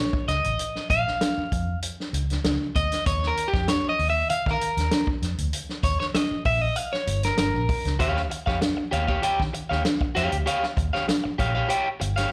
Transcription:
Already playing: clean electric guitar C#5
0.13 kick
0.28 fingered electric bass C#2, clean electric guitar D#5, snare, closed hi-hat
0.44 fingered electric bass A1, closed hi-hat
0.59 closed hi-hat
0.76 snare
0.90 fingered electric bass A#1, clean electric guitar F5, kick, closed hi-hat
1.07 snare
1.21 snare, closed hi-hat
1.38 muted fingered electric bass stroke
1.52 fingered electric bass F2, kick, closed hi-hat
1.82 closed hi-hat
2.00 snare
2.13 fingered electric bass C#2, closed hi-hat
2.30 snare, closed hi-hat
2.44 fingered electric bass C#2, snare, closed hi-hat
2.75 fingered electric bass D2, clean electric guitar D#5, kick, closed hi-hat
2.92 snare, closed hi-hat
3.06 fingered electric bass D#2, clean electric guitar C#5, kick, closed hi-hat
3.23 snare
3.27 clean electric guitar A#4
3.37 closed hi-hat
3.48 clean electric guitar G4
3.54 fingered electric bass F2, kick, snare
3.68 clean electric guitar C#5, snare, closed hi-hat
3.89 clean electric guitar D#5
3.99 fingered electric bass D#2, open hi-hat
4.10 clean electric guitar E5
4.30 clean electric guitar F5, muted fingered electric bass stroke, closed hi-hat
4.46 fingered electric bass D#3, kick, snare
4.51 clean electric guitar A#4
4.61 closed hi-hat
4.77 fingered electric bass D#2, snare, closed hi-hat
4.91 snare, closed hi-hat
5.07 kick
5.22 fingered electric bass F2, snare, closed hi-hat
5.38 fingered electric bass D2, closed hi-hat
5.53 closed hi-hat
5.69 snare
5.83 fingered electric bass D#2, clean electric guitar C#5, kick, closed hi-hat
6.00 clean electric guitar C#5, snare
6.14 clean electric guitar D#5, snare, closed hi-hat
6.31 muted fingered electric bass stroke
6.45 fingered electric bass A#1, clean electric guitar E5, kick, open hi-hat
6.61 clean electric guitar D#5
6.76 clean electric guitar F5, closed hi-hat
6.93 clean electric guitar C#5, snare
7.07 fingered electric bass G1, closed hi-hat
7.23 clean electric guitar A#4, snare, closed hi-hat
7.37 fingered electric bass G1, clean electric guitar A#4, snare, closed hi-hat
7.54 fingered electric bass A#1
7.69 kick, open hi-hat
7.85 fingered electric bass C#2, snare, closed hi-hat
7.99 fingered electric bass D#2, clean electric guitar G4 C#5 F5, kick, closed hi-hat
8.16 snare
8.30 muted clean electric guitar stroke, closed hi-hat
8.46 fingered electric bass F2, clean electric guitar G4 C#5 F5, kick, snare
8.61 muted clean electric guitar stroke, snare, closed hi-hat
8.77 muted clean electric guitar stroke
8.91 fingered electric bass D#2, clean electric guitar G4 C#5 F5, closed hi-hat
9.08 clean electric guitar G4 C#5 F5, kick
9.22 clean electric guitar G4 C#5 G5, muted fingered electric bass stroke, closed hi-hat
9.40 fingered electric bass D#3, kick, snare
9.53 muted clean electric guitar stroke, closed hi-hat
9.69 fingered electric bass D#2, clean electric guitar G4 C#5 F5, snare
9.85 snare, closed hi-hat
10.01 muted clean electric guitar stroke, kick
10.15 fingered electric bass F2, clean electric guitar G4 C#5 F5, snare, closed hi-hat
10.32 fingered electric bass D2, muted clean electric guitar stroke, closed hi-hat
10.46 clean electric guitar G4 C#5 F5, closed hi-hat
10.63 snare
10.77 fingered electric bass D#2, muted clean electric guitar stroke, kick, closed hi-hat
10.93 clean electric guitar G4 C#5 F5, snare
11.08 muted clean electric guitar stroke, snare, closed hi-hat
11.24 muted clean electric guitar stroke, muted fingered electric bass stroke
11.38 fingered electric bass A#1, clean electric guitar G4 C#5 F5, kick, closed hi-hat
11.55 clean electric guitar G4 C#5 F5
11.69 clean electric guitar G4 C#5 G5, closed hi-hat
12.00 fingered electric bass G1, muted clean electric guitar stroke, closed hi-hat
12.16 clean electric guitar G4 C#5 F5, snare, closed hi-hat

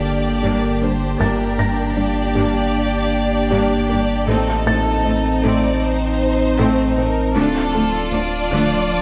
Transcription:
Already playing: sub bass G1, ambient pad D3 A#3 G4 A#4, violin section D4 G4 D5
0.43 cello section G2, synth pluck G3, viola section A#3 D4
0.81 cello section G2, synth pluck A#3, viola section A#3 D4, violin section C5
1.19 sub bass G1, cello section G2, synth pluck G3, ambient pad A#3 D4 G4 D5, viola section A#3 D4, violin section D4 G4 A#4, felt piano A6
1.58 cello section G2, viola section A#3 D4, synth pluck D4, felt piano A#6
1.96 cello section G2, viola section A#3 D4, synth pluck D4, violin section D5
2.35 cello section G2, synth pluck G3, viola section A#3 D4
3.51 cello section G2, synth pluck G3, viola section A#3 D4
3.89 cello section G2, synth pluck A#3, viola section A#3 D4
4.28 sub bass A1, cello section A2, synth pluck A3, viola section A3 C4, ambient pad C4 D#4 C5 A5, violin section D#4 A4
4.66 cello section A2, viola section A3 C4, synth pluck D#4, felt piano A6
5.05 cello section A2, viola section A3 C4, synth pluck D#4
5.43 cello section A2, synth pluck A3, viola section A3 C4, violin section D5
5.83 violin section C5
6.59 cello section A2, synth pluck A3, viola section A3 C4
6.98 cello section A2, viola section A3 C4, synth pluck C4, violin section A#4
7.35 sub bass D1, cello section D2, synth pluck D3, ambient pad F3 D4 D5, viola section A3 D4, violin section D4 F4 A4
7.74 cello section D2, synth pluck A3, viola section A3 D4
8.13 cello section D2, viola section A3 D4, synth pluck A3, violin section D5
8.51 cello section D2, synth pluck D3, viola section A3 D4

